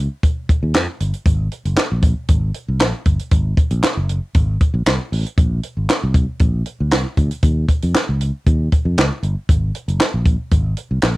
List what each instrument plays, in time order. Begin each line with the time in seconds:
0.23 kick, closed hi-hat
0.49 muted fingered electric bass stroke, kick, closed hi-hat
0.63 fingered electric bass D#2
0.74 fingered electric bass F2, snare, clap, closed hi-hat
1.00 fingered electric bass G1, closed hi-hat
1.14 closed hi-hat
1.26 fingered electric bass G#1, kick, closed hi-hat
1.52 closed hi-hat
1.65 fingered electric bass F#1, closed hi-hat
1.77 snare, clap, closed hi-hat
1.92 fingered electric bass A#1
2.02 kick, closed hi-hat
2.28 fingered electric bass G#1, kick, closed hi-hat
2.54 closed hi-hat
2.68 fingered electric bass C2
2.79 fingered electric bass A#1, snare, clap, closed hi-hat
3.06 fingered electric bass G1, kick, closed hi-hat
3.19 closed hi-hat
3.31 fingered electric bass G#1, kick, closed hi-hat
3.57 kick, closed hi-hat
3.71 fingered electric bass A#1, closed hi-hat
3.83 muted fingered electric bass stroke, snare, clap, closed hi-hat
3.97 fingered electric bass F#1
4.09 closed hi-hat
4.35 fingered electric bass G#1, kick, closed hi-hat
4.61 kick, closed hi-hat
4.74 fingered electric bass A#1
4.86 fingered electric bass C2, snare, clap, closed hi-hat
5.12 fingered electric bass A1, open hi-hat
5.26 closed hi-hat
5.37 fingered electric bass A#1, kick, closed hi-hat
5.63 closed hi-hat
5.77 fingered electric bass G#1
5.89 snare, clap, closed hi-hat
6.03 fingered electric bass C2
6.14 kick, closed hi-hat
6.40 fingered electric bass A#1, kick, closed hi-hat
6.66 closed hi-hat
6.80 fingered electric bass D2
6.91 fingered electric bass C2, snare, clap, closed hi-hat
7.17 fingered electric bass D2, kick, closed hi-hat
7.31 closed hi-hat
7.43 fingered electric bass D#2, kick, closed hi-hat
7.68 kick, closed hi-hat
7.82 fingered electric bass F2, closed hi-hat
7.94 muted fingered electric bass stroke, snare, clap, closed hi-hat
8.09 fingered electric bass C#2
8.21 closed hi-hat
8.46 fingered electric bass D#2, kick, closed hi-hat
8.72 kick, closed hi-hat
8.85 fingered electric bass F2
8.97 fingered electric bass C#2, snare, clap, closed hi-hat
9.23 fingered electric bass G1, closed hi-hat
9.49 fingered electric bass G#1, kick, closed hi-hat
9.75 closed hi-hat
9.88 fingered electric bass F#1, closed hi-hat
10.00 muted fingered electric bass stroke, snare, clap, closed hi-hat
10.14 fingered electric bass A#1
10.26 kick, closed hi-hat
10.51 fingered electric bass G#1, kick, closed hi-hat
10.77 closed hi-hat
10.91 fingered electric bass C2
11.02 fingered electric bass A#1, snare, clap, closed hi-hat